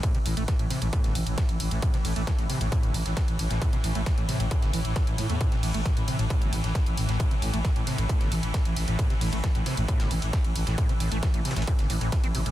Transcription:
<<
  \new Staff \with { instrumentName = "Synth drone" } { \clef bass \time 4/4 \key a \minor \tempo 4 = 134 <a, e>1~ | <a, e>1~ | <a, e>1~ | <a, e>1~ |
<a, e>1~ | <a, e>1~ | <a, e>1 | }
  \new Staff \with { instrumentName = "Acid bass" } { \clef bass \time 4/4 \key a \minor a,16 c16 a,16 a16 e16 a,16 c16 a,16 a,8 d16 r4 a,16 | a,16 c16 a,16 a16 e16 a,16 c16 a,16 a,8 d16 r4 a,16 | a,16 c16 a,16 a16 e16 a,16 c16 a,16 a,16 r16 e16 r8. a,16 a16 | a,16 c16 a,16 a16 e16 a,16 c16 a,16 a,8 d16 r4 a,16 |
a,16 c16 a,16 a16 e16 a,16 c16 a,16 a,8 d16 r4 a,16 | a,16 c16 a,16 a16 e16 a,16 c16 a,16 a,8 d16 r4 a,16 | a,16 c16 a,16 a16 e16 a,16 c16 a,16 a,16 r16 a,16 a,16 r16 c'16 c16 a,16 | }
  \new Staff \with { instrumentName = "FM bass" } { \clef bass \time 4/4 \key a \minor r8 a,,16 a,,16 r16 a,,16 r16 a,,16 r16 g,,16 a,,16 a,,16 r16 a,,16 a,,16 a,,16 | r8 a,,16 a,,16 r16 a,,16 r16 a,,16 r16 g,,16 a,,16 a,,16 r16 a,,16 a,,16 a,,16 | r8 a,,16 a,,16 r16 a,,16 r16 a,,16 r16 g,,16 a,,16 a,,16 r16 a,,16 a,16 e,16 | r8 a,,16 a,,16 r16 a,,16 r16 a,,16 r16 g,,16 a,,16 a,,16 r16 a,,16 a,,16 a,,16 |
r8 a,,16 a,,16 r16 a,,16 r16 a,,16 r16 g,,16 a,,16 a,,16 r16 a,,16 a,,16 a,,16 | r8 a,,16 a,,16 r16 a,,16 r16 a,,16 r16 g,,16 a,,16 a,,16 r16 a,,16 a,,16 a,,16 | r8 a,,16 a,,16 r16 a,,16 r16 a,,16 r16 g,,16 a,,16 a,,16 r16 a,,16 a,,16 a,,16 | }
  \new DrumStaff \with { instrumentName = "Drums" } \drummode { \time 4/4 <hh bd cymr>16 <hh cymr>16 <hh hho cymr>16 <hh cymr>16 <hh bd cymr sn>16 <hh cymr>16 <hh hho cymr sn>16 <hh cymr>16 <hh bd cymr>16 <hh cymr sn>16 <hh hho cymr>16 <hh cymr>16 <hh bd cymr sn>16 <hh cymr>16 <hh hho cymr>16 <hh cymr>16 | <hh bd cymr>16 <hh cymr sn>16 <hho cymr>16 <hh cymr>16 <hh bd cymr sn>16 <hh cymr>16 <hh hho cymr>16 <hh cymr>16 <hh bd cymr>16 <hh cymr>16 <hh hho cymr>16 <hh cymr sn>16 <hh bd cymr sn>16 <hh cymr>16 <hh hho cymr>16 <hh cymr sn>16 | <hh bd cymr>16 <hh cymr>16 <hh hho cymr>16 <hh cymr>16 <hh bd cymr sn>16 <hh cymr>16 <hh hho cymr sn>16 <hh cymr>16 <hh bd cymr>16 <hh cymr sn>16 <hh hho cymr>16 <hh cymr>16 <hh bd cymr sn>16 <hh cymr>16 <hh hho cymr>16 <hh cymr>16 | <hh bd cymr>16 <hh cymr sn>16 <hho cymr>16 <hh cymr>16 <hh bd cymr sn>16 <hh cymr>16 <hh hho cymr>16 <hh cymr>16 <hh bd cymr>16 <hh cymr>16 <hh hho cymr>16 <hh cymr sn>16 <hh bd cymr sn>16 <hh cymr>16 <hh hho cymr>16 <hh cymr sn>16 |
<hh bd cymr>16 <hh cymr>16 <hh hho cymr>16 <hh cymr>16 <hh bd cymr sn>16 <hh cymr>16 <hh hho cymr sn>16 <hh cymr>16 <hh bd cymr>16 <hh cymr sn>16 <hh hho cymr>16 <hh cymr>16 <hh bd cymr sn>16 <hh cymr>16 <hh hho cymr>16 <hh cymr>16 | <hh bd cymr>16 <hh cymr sn>16 <hho cymr>16 <hh cymr>16 <hh bd cymr sn>16 <hh cymr>16 <hh hho cymr sn>16 <hh cymr>16 <hh bd cymr>16 <hh cymr sn>16 <hh hho cymr>16 <hh cymr>16 <hh bd cymr sn>16 <hh cymr>16 <hh hho cymr>16 <hh cymr sn>16 | <hh bd cymr>16 <hh cymr>16 <hh hho cymr>16 <hh cymr>16 <hh bd cymr sn>16 <hh cymr>16 <hh hho cymr>32 <hh sn>32 <hh cymr sn>32 <hh sn>32 <hh bd cymr>16 <hh cymr sn>16 <hh hho cymr>16 <hh cymr>16 <hh bd cymr sn>16 <hh cymr>16 <hh hho cymr>16 <hh cymr>16 | }
>>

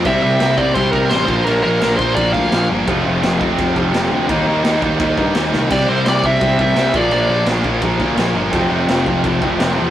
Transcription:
<<
  \new Staff \with { instrumentName = "Lead electric guitar" } { \time 4/4 \key bes \lydian \tempo 4 = 170 e''8 e''4 d''8 c''8 bes'8 c''8 c''8 | bes'8 bes'4 c''8 d''8 f''4 r8 | r1 | r1 |
d''8 c''8 d''8 e''4 e''4 d''8 | d''4 r2. | r1 | }
  \new Staff \with { instrumentName = "Distorted electric guitar" } { \time 4/4 \key bes \lydian <c g c' e' g'>2.~ <c g c' e' g'>8 <bes, f bes d' f'>8~ | <bes, f bes d' f'>2.~ <bes, f bes d' f'>8 r8 | <f, c f a c' f'>1 | <ees g bes ees'>1 |
<c g c' e'>2.~ <c g c' e'>8 <bes, f bes d'>8~ | <bes, f bes d'>2.~ <bes, f bes d'>8 r8 | <f, c f a c'>1 | }
  \new Staff \with { instrumentName = "Distorted electric guitar" } { \clef bass \time 4/4 \key bes \lydian <c g c'>8 <c g c'>8 <c g c'>8 <c g c'>8 <c g c'>8 <c g c'>8 <c g c'>8 <bes, f bes>8 | <bes, f bes>8 <bes, f bes>8 <bes, f bes>8 <bes, f bes>8 <bes, f bes>8 <bes, f bes>8 <bes, f bes>8 <bes, f bes>8 | <f, c f>8 <f, c f>8 <f, c f>8 <f, c f>8 <f, c f>8 <f, c f>8 <f, c f>8 <f, c f>8 | <ees bes ees'>8 <ees bes ees'>8 <ees bes ees'>8 <ees bes ees'>8 <ees bes ees'>8 <ees bes ees'>8 <ees bes ees'>8 <ees bes ees'>8 |
<c g c'>8 <c g c'>8 <c g c'>8 <c g c'>8 <c g c'>8 <c g c'>8 <c g c'>8 <bes, f bes>8 | <bes, f bes>8 <bes, f bes>8 <bes, f bes>8 <bes, f bes>8 <bes, f bes>8 <bes, f bes>8 <bes, f bes>8 <bes, f bes>8 | <f, c f>8 <f, c f>8 <f, c f>8 <f, c f>8 <f, c f>8 <f, c f>8 <f, c f>8 <f, c f>8 | }
  \new Staff \with { instrumentName = "Distorted electric guitar" } { \clef bass \time 4/4 \key bes \lydian <c g c'>8 <c g c'>8 <c g c'>8 <c g c'>8 <c g c'>8 <c g c'>8 <c g c'>8 <bes, f bes>8 | <bes, f bes>8 <bes, f bes>8 <bes, f bes>8 <bes, f bes>8 <bes, f bes>8 <bes, f bes>8 <bes, f bes>8 <bes, f bes>8 | <f, c f>8 <f, c f>8 <f, c f>8 <f, c f>8 <f, c f>8 <f, c f>8 <f, c f>8 <f, c f>8 | <ees bes ees'>8 <ees bes ees'>8 <ees bes ees'>8 <ees bes ees'>8 <ees bes ees'>8 <ees bes ees'>8 <ees bes ees'>8 <ees bes ees'>8 |
<c g c'>8 <c g c'>8 <c g c'>8 <c g c'>8 <c g c'>8 <c g c'>8 <c g c'>8 <bes, f bes>8 | <bes, f bes>8 <bes, f bes>8 <bes, f bes>8 <bes, f bes>8 <bes, f bes>8 <bes, f bes>8 <bes, f bes>8 <bes, f bes>8 | <f, c f>8 <f, c f>8 <f, c f>8 <f, c f>8 <f, c f>8 <f, c f>8 <f, c f>8 <f, c f>8 | }
  \new Staff \with { instrumentName = "Picked electric bass" } { \clef bass \time 4/4 \key bes \lydian c,8 c,8 c,4 c,8 c,8 a,,8 bes,,8 | bes,,8 bes,,8 bes,,8 bes,,8 bes,,8 d,8 bes,,8 g,,8 | f,,8 f,,8 f,,4 f,,8 f,,8 f,,8 d,8 | ees,8 ees,8 ees,8 ees,8 ees,8 g,8 ees,8 c,8 |
c,8 c,8 c,4 c,8 c,8 c,8 bes,,8 | bes,,8 bes,,8 bes,,8 bes,,8 bes,,8 d,8 bes,,8 g,,8 | f,,8 f,,8 f,,4 f,,8 f,,8 f,,8 e,8 | }
  \new DrumStaff \with { instrumentName = "Drums" } \drummode { \time 4/4 <cymc bd>4 <cymc sn>8 bd8 <cymc bd>8 bd8 <cymc sn>8 bd8 | cymc4 <cymc sn>8 bd8 <cymc bd>8 bd8 <cymc sn>4 | <cymc bd>4 <cymc sn>8 bd8 <cymc bd>8 bd8 <cymc sn>4 | <cymc bd>4 <cymc sn>8 bd8 <cymc bd>8 bd8 <cymc sn>8 sn8 |
<cymc bd>4 <cymc sn>8 bd8 <cymc bd>8 bd8 <cymc sn>8 bd8 | cymc4 <cymc sn>8 bd8 <cymc bd>8 bd8 <cymc sn>4 | <cymc bd>4 <cymc sn>8 bd8 <cymc bd>8 bd8 <cymc sn>4 | }
>>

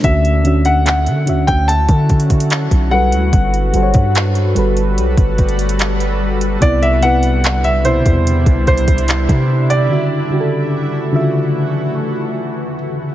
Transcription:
<<
  \new Staff \with { instrumentName = "Grand piano" } { \time 4/4 \key d \major \tempo 4 = 73 e''8. fis''16 fis''8. g''16 a''4. fis''8~ | fis''4 r2. | d''16 e''16 fis''8. e''16 c''4 c''4~ c''16 d''16~ | d''2.~ d''8 r8 | }
  \new Staff \with { instrumentName = "FM electric piano" } { \time 4/4 \key d \major <d cis' fis' e''>8 <d cis' fis' e''>4 <d cis' fis' e''>4. r8 <g fis' a' b'>8~ | <g fis' a' b'>8 <g fis' a' c'' cis''>4 <g fis' a' b'>4. r4 | <c b e' d''>8 <c b e' b'>4 <b, c e' e''>4. r4 | <cis d fis' e''>8 <cis d fis' g' a'>4 <cis d f' fis' e''>4. r4 | }
  \new Staff \with { instrumentName = "Ambient pad" } { \time 4/4 \key d \major <d cis' e' fis'>2.~ <d cis' e' fis'>8 <g a' b'>8~ | <g a' b'>1 | <d g d' e'>1 | <e a fis'>1 | }
  \new Staff \with { instrumentName = "808-style bass" } { \clef bass \time 4/4 \key d \major d,4~ d,16 d16 d,16 d,8 d4 b,,8 d,16 | g,,8 g,,16 g,8. g,,8 b,,16 g,,4.~ g,,16 | c,4.~ c,16 e,8 c,16 c,16 c,8 c8. | r1 | }
  \new DrumStaff \with { instrumentName = "Drums" } \drummode { \time 4/4 <hh bd>16 hh16 hh16 hh16 <hc hh>16 hh16 hh16 <hh bd>16 hh16 <hh bd>16 <hh bd>32 hh32 <hh bd>32 hh32 <hc hh>16 <hh bd>8 hh16 | <hh bd>16 hh16 hh16 <hh bd>16 <hc hh>16 hh16 hh16 hh16 hh16 <hh bd>16 <hh bd>32 hh32 hh32 hh32 <hc hh>16 hh8 hh16 | <hh bd>16 hh16 hh16 hh16 <hc hh>16 hh16 hh16 <hh bd>16 hh16 <hh bd>16 <hh bd>32 hh32 <hh bd>32 hh32 <hc hh>16 <hh bd>8 hh16 | r4 r4 r4 r4 | }
>>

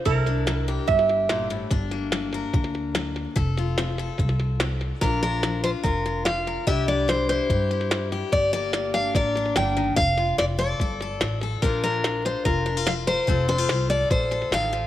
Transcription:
<<
  \new Staff \with { instrumentName = "Steel-string acoustic guitar" } { \time 4/4 \key bes \major \tempo 4 = 145 r1 | r1 | r1 | bes'8 bes'4 c''8 bes'4 f''4 |
e''8 d''8 c''8 c''2 r8 | d''8 d''4 f''8 d''4 g''4 | f''4 d''8 d''2 r8 | bes'8 bes'4 c''8 bes'4 f''8 c''8~ |
c''8 c''4 d''8 c''4 f''4 | }
  \new Staff \with { instrumentName = "Resonator guitar played with a steel bar" } { \time 4/4 \key bes \major bes'2 e''4. r8 | r1 | r1 | r1 |
r1 | r1 | r1 | r1 |
r1 | }
  \new Staff \with { instrumentName = "Steel-string acoustic guitar" } { \time 4/4 \key bes \major << { e'8 d'4 g'2~ g'8 | d'8 bes4 bes'2~ bes'8 | a'8 f'4 a'2~ a'8 | <f d' f'>8 d'4 f'8 f'8 f'4 bes'8 |
<g d' e' g'>8 d'4 e'8 g'8 e'4 g'8~ | g'8 bes4 d'8 bes'8 d'4. | r8 f'4 a'8 a'8 a'4 a'8 | <f d' f'>8 d'4 f'8 f'8 d'16 f'8. bes'8 |
<c' f' a'>8 d'16 f'8. a'8 a'8 a'4. | } \\ { c4 g4 g,4 bes,8 a,8 | g,4 g4 d4 g4 | f4 c'4 c4 c'4 | bes,4 f4 bes,4 f4 |
c4 g4 g,4 g4 | g,4 g4 d4 d8 ees8 | f4 c'4 c4 c'4 | bes,4 f4 bes,4 f4 |
f4 c'4 c4 ees8 f8 | } >> }
  \new Staff \with { instrumentName = "Upright bass" } { \clef bass \time 4/4 \key bes \major c,2 g,,2 | g,,2 d,2 | f,,2 c,2 | bes,,2 f,,2 |
c,2 g,2 | g,,2 a,,4 g,,4 | f,,4 f,,4 g,,4 a,,4 | bes,,2 f,,2 |
f,,4 c,4 bes,,4 a,,4 | }
  \new DrumStaff \with { instrumentName = "Drums" } \drummode { \time 4/4 <bd sn>8 sn8 <hhp sn>8 sn8 <bd sn>16 sn16 sn8 <hhp sn>8 sn8 | <bd sn>8 sn8 <hhp sn>8 sn8 <bd sn>16 sn16 sn8 <hhp sn>8 sn8 | <bd sn>8 sn8 <hhp sn>8 sn8 <bd sn>16 sn16 sn8 <hhp sn>8 sn8 | <bd sn>8 sn8 <hhp sn>8 sn8 <bd sn>8 sn8 <hhp sn>8 sn8 |
<bd sn>8 sn8 <hhp sn>8 sn8 <bd sn>8 sn16 sn16 <hhp sn>8 sn8 | <bd sn>8 sn8 <hhp sn>8 sn8 <bd sn>8 sn16 sn16 <hhp sn>8 sn8 | <bd sn>8 sn8 <hhp sn>8 sn8 <bd sn>8 sn8 <hhp sn>8 sn8 | <bd sn>8 sn8 <hhp sn>8 sn8 <bd sn>8 sn8 <hhp sn>8 sn8 |
<bd sn>8 sn8 <hhp sn>8 sn8 <bd sn>8 sn16 sn16 <hhp sn>8 sn8 | }
>>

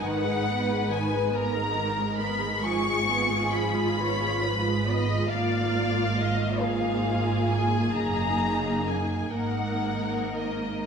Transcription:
<<
  \new Staff \with { instrumentName = "Violin section" } { \time 12/8 \key ees \minor \tempo 4. = 45 ges''4 aes''8 bes''4 ces'''8 des'''4 ces'''2 | d''4 ees''8 f''4 aes''8 bes''4 aes''8 ges''4 ees''8 | }
  \new Staff \with { instrumentName = "Violin section" } { \time 12/8 \key ees \minor ces''4. bes'4. aes'4. des''8 ces''8 ees''8 | f''4. aes'2. bes'4. | }
  \new Staff \with { instrumentName = "Viola section" } { \clef bass \time 12/8 \key ees \minor << { ees'2. f'2. | f'4. f'4. ees'4. ees'4. | } \\ { ees16 aes16 ces'16 aes16 ees16 aes16 ces'16 aes16 ees16 aes16 ces'16 aes16 f16 aes16 ces'16 aes16 f16 aes16 ces'16 aes16 f16 aes16 ces'16 aes16 | bes4. bes4. bes4. bes4. | } >> }
  \new Staff \with { instrumentName = "Cello section" } { \clef bass \time 12/8 \key ees \minor aes,1. | aes,2. ges,4. aes,4. | }
  \new Staff \with { instrumentName = "Double bass section" } { \clef bass \time 12/8 \key ees \minor aes,,1. | aes,,2. ges,,4. aes,,4. | }
>>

